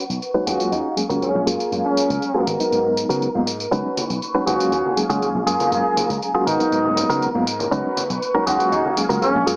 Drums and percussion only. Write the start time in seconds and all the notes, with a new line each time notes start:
0.10 tambourine
0.22 tambourine
0.47 tambourine
0.60 tambourine
0.72 tambourine
0.97 tambourine
1.10 tambourine
1.22 tambourine
1.47 tambourine
1.60 tambourine
1.72 tambourine
1.97 tambourine
2.10 tambourine
2.22 tambourine
2.47 tambourine
2.60 tambourine
2.72 tambourine
2.97 tambourine
3.10 tambourine
3.22 tambourine
3.47 tambourine
3.60 tambourine
3.72 tambourine
3.85 maracas
3.97 tambourine, high conga
4.10 tambourine, maracas
4.22 tambourine, maracas
4.35 maracas
4.47 tambourine, high conga
4.60 tambourine, maracas
4.72 tambourine, maracas
4.85 high conga, maracas
4.97 tambourine
5.10 tambourine, maracas
5.22 tambourine, high conga, maracas
5.35 maracas
5.47 tambourine
5.60 tambourine, high conga, maracas
5.72 tambourine, maracas
5.84 maracas
5.96 tambourine, high conga
6.09 tambourine, maracas
6.22 tambourine, maracas
6.35 maracas
6.47 tambourine, high conga
6.60 tambourine, maracas
6.72 tambourine
6.84 high conga, maracas
6.97 tambourine, low conga
7.09 tambourine, maracas
7.22 tambourine, high conga, maracas
7.35 maracas
7.47 tambourine
7.59 tambourine, high conga, maracas
7.72 tambourine
7.86 maracas
7.97 tambourine, high conga
8.09 tambourine, maracas
8.22 tambourine, maracas
8.35 maracas
8.46 tambourine, high conga
8.59 tambourine, maracas
8.71 tambourine, maracas
8.85 high conga, maracas
8.97 tambourine
9.10 tambourine, maracas
9.22 tambourine, high conga, maracas
9.47 tambourine